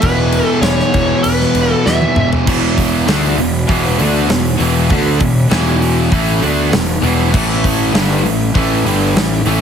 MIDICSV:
0, 0, Header, 1, 6, 480
1, 0, Start_track
1, 0, Tempo, 607903
1, 29, Time_signature, 4, 2, 24, 8
1, 7588, End_track
2, 0, Start_track
2, 0, Title_t, "Lead electric guitar"
2, 0, Program_c, 0, 29
2, 5, Note_on_c, 0, 71, 102
2, 360, Note_off_c, 0, 71, 0
2, 360, Note_on_c, 0, 69, 102
2, 465, Note_off_c, 0, 69, 0
2, 485, Note_on_c, 0, 73, 87
2, 946, Note_off_c, 0, 73, 0
2, 970, Note_on_c, 0, 71, 94
2, 1357, Note_off_c, 0, 71, 0
2, 1357, Note_on_c, 0, 69, 94
2, 1467, Note_on_c, 0, 76, 90
2, 1475, Note_off_c, 0, 69, 0
2, 1803, Note_off_c, 0, 76, 0
2, 7588, End_track
3, 0, Start_track
3, 0, Title_t, "Analog synth pad"
3, 0, Program_c, 1, 89
3, 26, Note_on_c, 1, 52, 83
3, 26, Note_on_c, 1, 59, 67
3, 28, Note_on_c, 1, 66, 97
3, 1929, Note_off_c, 1, 52, 0
3, 1929, Note_off_c, 1, 59, 0
3, 1930, Note_off_c, 1, 66, 0
3, 1963, Note_on_c, 1, 59, 64
3, 1964, Note_on_c, 1, 52, 78
3, 1968, Note_on_c, 1, 66, 96
3, 5768, Note_off_c, 1, 52, 0
3, 5768, Note_off_c, 1, 59, 0
3, 5770, Note_off_c, 1, 66, 0
3, 5776, Note_on_c, 1, 64, 71
3, 5782, Note_on_c, 1, 71, 77
3, 5783, Note_on_c, 1, 57, 83
3, 7588, Note_off_c, 1, 57, 0
3, 7588, Note_off_c, 1, 64, 0
3, 7588, Note_off_c, 1, 71, 0
3, 7588, End_track
4, 0, Start_track
4, 0, Title_t, "Distorted electric guitar"
4, 0, Program_c, 2, 30
4, 7, Note_on_c, 2, 40, 98
4, 21, Note_on_c, 2, 47, 113
4, 38, Note_on_c, 2, 52, 102
4, 724, Note_off_c, 2, 40, 0
4, 724, Note_off_c, 2, 52, 0
4, 731, Note_off_c, 2, 47, 0
4, 733, Note_on_c, 2, 52, 93
4, 750, Note_on_c, 2, 47, 74
4, 762, Note_on_c, 2, 40, 72
4, 1446, Note_off_c, 2, 40, 0
4, 1447, Note_off_c, 2, 52, 0
4, 1455, Note_off_c, 2, 47, 0
4, 1455, Note_on_c, 2, 40, 78
4, 1473, Note_on_c, 2, 47, 81
4, 1481, Note_on_c, 2, 52, 89
4, 1928, Note_off_c, 2, 40, 0
4, 1937, Note_off_c, 2, 47, 0
4, 1941, Note_off_c, 2, 52, 0
4, 1942, Note_on_c, 2, 40, 99
4, 1952, Note_on_c, 2, 47, 99
4, 1955, Note_on_c, 2, 52, 124
4, 2415, Note_off_c, 2, 47, 0
4, 2418, Note_on_c, 2, 50, 104
4, 2419, Note_off_c, 2, 40, 0
4, 2424, Note_off_c, 2, 52, 0
4, 2427, Note_on_c, 2, 57, 100
4, 2431, Note_on_c, 2, 62, 108
4, 2657, Note_off_c, 2, 50, 0
4, 2662, Note_off_c, 2, 57, 0
4, 2662, Note_on_c, 2, 40, 76
4, 2663, Note_off_c, 2, 62, 0
4, 2668, Note_on_c, 2, 47, 78
4, 2858, Note_off_c, 2, 40, 0
4, 2861, Note_off_c, 2, 47, 0
4, 2906, Note_on_c, 2, 40, 92
4, 2909, Note_on_c, 2, 47, 102
4, 2911, Note_on_c, 2, 52, 114
4, 3141, Note_off_c, 2, 40, 0
4, 3143, Note_off_c, 2, 47, 0
4, 3144, Note_off_c, 2, 52, 0
4, 3148, Note_on_c, 2, 50, 91
4, 3152, Note_on_c, 2, 57, 99
4, 3159, Note_on_c, 2, 62, 110
4, 3382, Note_off_c, 2, 50, 0
4, 3384, Note_off_c, 2, 57, 0
4, 3388, Note_off_c, 2, 62, 0
4, 3388, Note_on_c, 2, 40, 70
4, 3390, Note_on_c, 2, 47, 74
4, 3582, Note_off_c, 2, 40, 0
4, 3583, Note_off_c, 2, 47, 0
4, 3627, Note_on_c, 2, 40, 80
4, 3635, Note_on_c, 2, 47, 94
4, 3638, Note_on_c, 2, 52, 85
4, 3859, Note_off_c, 2, 47, 0
4, 3862, Note_off_c, 2, 40, 0
4, 3862, Note_off_c, 2, 52, 0
4, 3862, Note_on_c, 2, 50, 97
4, 3866, Note_on_c, 2, 57, 107
4, 3875, Note_on_c, 2, 62, 105
4, 4100, Note_off_c, 2, 50, 0
4, 4101, Note_off_c, 2, 57, 0
4, 4106, Note_off_c, 2, 62, 0
4, 4107, Note_on_c, 2, 40, 69
4, 4110, Note_on_c, 2, 47, 64
4, 4301, Note_off_c, 2, 40, 0
4, 4303, Note_off_c, 2, 47, 0
4, 4340, Note_on_c, 2, 40, 94
4, 4349, Note_on_c, 2, 47, 97
4, 4353, Note_on_c, 2, 52, 119
4, 4817, Note_off_c, 2, 47, 0
4, 4818, Note_off_c, 2, 52, 0
4, 4819, Note_off_c, 2, 40, 0
4, 4820, Note_on_c, 2, 45, 101
4, 4827, Note_on_c, 2, 52, 103
4, 4832, Note_on_c, 2, 57, 96
4, 5056, Note_off_c, 2, 45, 0
4, 5056, Note_off_c, 2, 57, 0
4, 5059, Note_on_c, 2, 50, 88
4, 5062, Note_off_c, 2, 52, 0
4, 5065, Note_on_c, 2, 57, 93
4, 5074, Note_on_c, 2, 62, 103
4, 5299, Note_off_c, 2, 50, 0
4, 5301, Note_on_c, 2, 40, 69
4, 5302, Note_off_c, 2, 57, 0
4, 5306, Note_off_c, 2, 62, 0
4, 5307, Note_on_c, 2, 47, 74
4, 5499, Note_off_c, 2, 40, 0
4, 5502, Note_off_c, 2, 47, 0
4, 5533, Note_on_c, 2, 40, 76
4, 5540, Note_on_c, 2, 47, 90
4, 5541, Note_on_c, 2, 52, 84
4, 5770, Note_off_c, 2, 52, 0
4, 5771, Note_off_c, 2, 47, 0
4, 5774, Note_on_c, 2, 45, 103
4, 5776, Note_off_c, 2, 40, 0
4, 5780, Note_on_c, 2, 52, 106
4, 5784, Note_on_c, 2, 57, 113
4, 6256, Note_off_c, 2, 45, 0
4, 6259, Note_off_c, 2, 52, 0
4, 6261, Note_off_c, 2, 57, 0
4, 6261, Note_on_c, 2, 43, 114
4, 6266, Note_on_c, 2, 50, 105
4, 6270, Note_on_c, 2, 55, 124
4, 6500, Note_off_c, 2, 43, 0
4, 6502, Note_off_c, 2, 50, 0
4, 6504, Note_off_c, 2, 55, 0
4, 6514, Note_on_c, 2, 45, 72
4, 6520, Note_on_c, 2, 52, 75
4, 6705, Note_off_c, 2, 45, 0
4, 6708, Note_off_c, 2, 52, 0
4, 6747, Note_on_c, 2, 45, 104
4, 6750, Note_on_c, 2, 52, 114
4, 6753, Note_on_c, 2, 57, 108
4, 6983, Note_off_c, 2, 45, 0
4, 6984, Note_off_c, 2, 52, 0
4, 6986, Note_off_c, 2, 57, 0
4, 6993, Note_on_c, 2, 43, 96
4, 6997, Note_on_c, 2, 50, 96
4, 6999, Note_on_c, 2, 55, 92
4, 7226, Note_off_c, 2, 43, 0
4, 7228, Note_off_c, 2, 50, 0
4, 7229, Note_off_c, 2, 55, 0
4, 7235, Note_on_c, 2, 52, 77
4, 7236, Note_on_c, 2, 45, 67
4, 7426, Note_off_c, 2, 45, 0
4, 7426, Note_off_c, 2, 52, 0
4, 7473, Note_on_c, 2, 45, 75
4, 7479, Note_on_c, 2, 52, 90
4, 7484, Note_on_c, 2, 57, 90
4, 7588, Note_off_c, 2, 45, 0
4, 7588, Note_off_c, 2, 52, 0
4, 7588, Note_off_c, 2, 57, 0
4, 7588, End_track
5, 0, Start_track
5, 0, Title_t, "Fingered electric bass"
5, 0, Program_c, 3, 33
5, 21, Note_on_c, 3, 28, 97
5, 313, Note_off_c, 3, 28, 0
5, 484, Note_on_c, 3, 28, 89
5, 636, Note_off_c, 3, 28, 0
5, 740, Note_on_c, 3, 28, 96
5, 887, Note_off_c, 3, 28, 0
5, 989, Note_on_c, 3, 28, 91
5, 1134, Note_off_c, 3, 28, 0
5, 1219, Note_on_c, 3, 28, 90
5, 1367, Note_off_c, 3, 28, 0
5, 1467, Note_on_c, 3, 40, 91
5, 1613, Note_off_c, 3, 40, 0
5, 1702, Note_on_c, 3, 28, 87
5, 1849, Note_off_c, 3, 28, 0
5, 1953, Note_on_c, 3, 28, 89
5, 2400, Note_off_c, 3, 28, 0
5, 2423, Note_on_c, 3, 38, 93
5, 2649, Note_off_c, 3, 38, 0
5, 2663, Note_on_c, 3, 28, 76
5, 2890, Note_off_c, 3, 28, 0
5, 2916, Note_on_c, 3, 28, 94
5, 3137, Note_off_c, 3, 28, 0
5, 3154, Note_on_c, 3, 38, 93
5, 3376, Note_off_c, 3, 38, 0
5, 3389, Note_on_c, 3, 28, 74
5, 3613, Note_off_c, 3, 28, 0
5, 3631, Note_on_c, 3, 28, 101
5, 3854, Note_off_c, 3, 28, 0
5, 3873, Note_on_c, 3, 38, 94
5, 4095, Note_off_c, 3, 38, 0
5, 4114, Note_on_c, 3, 28, 74
5, 4336, Note_off_c, 3, 28, 0
5, 4351, Note_on_c, 3, 28, 103
5, 4800, Note_off_c, 3, 28, 0
5, 4830, Note_on_c, 3, 33, 93
5, 5055, Note_off_c, 3, 33, 0
5, 5073, Note_on_c, 3, 38, 93
5, 5296, Note_off_c, 3, 38, 0
5, 5306, Note_on_c, 3, 28, 81
5, 5533, Note_off_c, 3, 28, 0
5, 5546, Note_on_c, 3, 28, 104
5, 5773, Note_off_c, 3, 28, 0
5, 5794, Note_on_c, 3, 33, 97
5, 6242, Note_off_c, 3, 33, 0
5, 6262, Note_on_c, 3, 31, 105
5, 6490, Note_off_c, 3, 31, 0
5, 6501, Note_on_c, 3, 33, 75
5, 6730, Note_off_c, 3, 33, 0
5, 6750, Note_on_c, 3, 33, 86
5, 6972, Note_off_c, 3, 33, 0
5, 6977, Note_on_c, 3, 31, 97
5, 7208, Note_off_c, 3, 31, 0
5, 7223, Note_on_c, 3, 33, 86
5, 7451, Note_off_c, 3, 33, 0
5, 7462, Note_on_c, 3, 33, 92
5, 7588, Note_off_c, 3, 33, 0
5, 7588, End_track
6, 0, Start_track
6, 0, Title_t, "Drums"
6, 14, Note_on_c, 9, 49, 80
6, 23, Note_on_c, 9, 36, 110
6, 93, Note_off_c, 9, 49, 0
6, 102, Note_off_c, 9, 36, 0
6, 256, Note_on_c, 9, 49, 65
6, 335, Note_off_c, 9, 49, 0
6, 494, Note_on_c, 9, 49, 74
6, 498, Note_on_c, 9, 38, 110
6, 573, Note_off_c, 9, 49, 0
6, 576, Note_off_c, 9, 38, 0
6, 629, Note_on_c, 9, 38, 29
6, 708, Note_off_c, 9, 38, 0
6, 740, Note_on_c, 9, 49, 59
6, 745, Note_on_c, 9, 36, 91
6, 819, Note_off_c, 9, 49, 0
6, 824, Note_off_c, 9, 36, 0
6, 978, Note_on_c, 9, 49, 84
6, 1057, Note_off_c, 9, 49, 0
6, 1109, Note_on_c, 9, 38, 38
6, 1188, Note_off_c, 9, 38, 0
6, 1221, Note_on_c, 9, 49, 67
6, 1300, Note_off_c, 9, 49, 0
6, 1472, Note_on_c, 9, 38, 69
6, 1551, Note_off_c, 9, 38, 0
6, 1594, Note_on_c, 9, 48, 70
6, 1673, Note_off_c, 9, 48, 0
6, 1707, Note_on_c, 9, 45, 89
6, 1786, Note_off_c, 9, 45, 0
6, 1837, Note_on_c, 9, 43, 99
6, 1915, Note_off_c, 9, 43, 0
6, 1951, Note_on_c, 9, 57, 115
6, 1953, Note_on_c, 9, 36, 123
6, 2030, Note_off_c, 9, 57, 0
6, 2032, Note_off_c, 9, 36, 0
6, 2193, Note_on_c, 9, 36, 83
6, 2196, Note_on_c, 9, 46, 67
6, 2272, Note_off_c, 9, 36, 0
6, 2275, Note_off_c, 9, 46, 0
6, 2433, Note_on_c, 9, 46, 92
6, 2437, Note_on_c, 9, 38, 112
6, 2512, Note_off_c, 9, 46, 0
6, 2516, Note_off_c, 9, 38, 0
6, 2669, Note_on_c, 9, 46, 64
6, 2748, Note_off_c, 9, 46, 0
6, 2910, Note_on_c, 9, 46, 91
6, 2914, Note_on_c, 9, 36, 92
6, 2989, Note_off_c, 9, 46, 0
6, 2993, Note_off_c, 9, 36, 0
6, 3152, Note_on_c, 9, 46, 62
6, 3231, Note_off_c, 9, 46, 0
6, 3392, Note_on_c, 9, 46, 90
6, 3396, Note_on_c, 9, 38, 105
6, 3471, Note_off_c, 9, 46, 0
6, 3475, Note_off_c, 9, 38, 0
6, 3632, Note_on_c, 9, 46, 62
6, 3711, Note_off_c, 9, 46, 0
6, 3866, Note_on_c, 9, 46, 78
6, 3872, Note_on_c, 9, 36, 111
6, 3945, Note_off_c, 9, 46, 0
6, 3951, Note_off_c, 9, 36, 0
6, 4107, Note_on_c, 9, 46, 66
6, 4111, Note_on_c, 9, 36, 88
6, 4186, Note_off_c, 9, 46, 0
6, 4190, Note_off_c, 9, 36, 0
6, 4350, Note_on_c, 9, 46, 76
6, 4354, Note_on_c, 9, 38, 113
6, 4429, Note_off_c, 9, 46, 0
6, 4433, Note_off_c, 9, 38, 0
6, 4595, Note_on_c, 9, 46, 59
6, 4674, Note_off_c, 9, 46, 0
6, 4831, Note_on_c, 9, 36, 90
6, 4831, Note_on_c, 9, 46, 85
6, 4909, Note_off_c, 9, 46, 0
6, 4910, Note_off_c, 9, 36, 0
6, 5072, Note_on_c, 9, 46, 60
6, 5151, Note_off_c, 9, 46, 0
6, 5312, Note_on_c, 9, 46, 84
6, 5316, Note_on_c, 9, 38, 117
6, 5391, Note_off_c, 9, 46, 0
6, 5395, Note_off_c, 9, 38, 0
6, 5554, Note_on_c, 9, 46, 59
6, 5633, Note_off_c, 9, 46, 0
6, 5795, Note_on_c, 9, 36, 123
6, 5799, Note_on_c, 9, 49, 112
6, 5874, Note_off_c, 9, 36, 0
6, 5877, Note_off_c, 9, 49, 0
6, 6035, Note_on_c, 9, 36, 98
6, 6039, Note_on_c, 9, 46, 68
6, 6114, Note_off_c, 9, 36, 0
6, 6118, Note_off_c, 9, 46, 0
6, 6275, Note_on_c, 9, 46, 91
6, 6279, Note_on_c, 9, 38, 107
6, 6354, Note_off_c, 9, 46, 0
6, 6358, Note_off_c, 9, 38, 0
6, 6519, Note_on_c, 9, 46, 64
6, 6598, Note_off_c, 9, 46, 0
6, 6751, Note_on_c, 9, 46, 96
6, 6753, Note_on_c, 9, 36, 92
6, 6830, Note_off_c, 9, 46, 0
6, 6832, Note_off_c, 9, 36, 0
6, 6998, Note_on_c, 9, 46, 73
6, 7077, Note_off_c, 9, 46, 0
6, 7236, Note_on_c, 9, 46, 95
6, 7240, Note_on_c, 9, 38, 111
6, 7315, Note_off_c, 9, 46, 0
6, 7319, Note_off_c, 9, 38, 0
6, 7466, Note_on_c, 9, 46, 64
6, 7545, Note_off_c, 9, 46, 0
6, 7588, End_track
0, 0, End_of_file